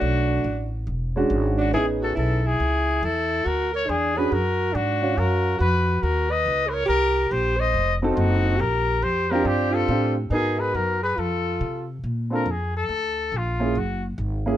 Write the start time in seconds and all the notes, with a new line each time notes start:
Already playing: A3 D4 F#4 C#5
0.01 B1
0.44 A1
0.87 E1
1.16 G#3 C#4 D4 F#4
1.30 G#1
1.58 D4 F#4
1.73 A1 B3 C#4 D#4 E4 G#4
2.01 F#4 A4
2.15 B1 E4 A4
2.43 E4 G#4
2.60 C#2
3.03 E2 E4 A4
3.45 D2 F#4 A#4
3.73 A#4 C#5
3.87 E2 D4 G#4
4.15 C#4 D4 F#4 G#4 B4
4.31 F#2 F#4 A#4
4.73 G#2 D4 F#4
5.02 C#4 F#4 C#5 F5
5.15 F#2 F#4 A#4
5.58 F2 F#4 B4
6.01 D#2 F#4 A#4
6.30 B4 D#5
6.46 C#2
6.66 G#4 A#4 B4
6.74 C#5
6.86 C2 G4 A#4
7.28 A#1 G4 C5
7.56 C5 D#5
7.74 F1
8.02 C4 D#4 F#4 A4
8.12 C#4 F4
8.16 F#1 D#4 F#4
8.57 A#1 G4 A#4
9.01 F2 G4 C5
9.29 C4 D4 F4 G4 A#4
9.33 G4
9.44 G2 D4 G4
9.71 F4 A4
9.88 A2 C4 D4 F4 G4
10.30 G#2 B3 D#4 F#4 G#4 A#4
10.59 G#4 B4
10.74 F#2 F#4 A#4
11.03 G#4 B4
11.16 F2 F4 A4
11.61 C3
12.04 A#2
12.30 C4 D4 F4 A4 A#4
12.46 F2
12.51 G#4
12.77 A4
12.89 D2
13.32 A#1
13.37 F4
13.60 A#3 C#4 E4 G#4
13.75 F#1 F#4
14.18 G#1
14.46 A#3 C#4 E4 G#4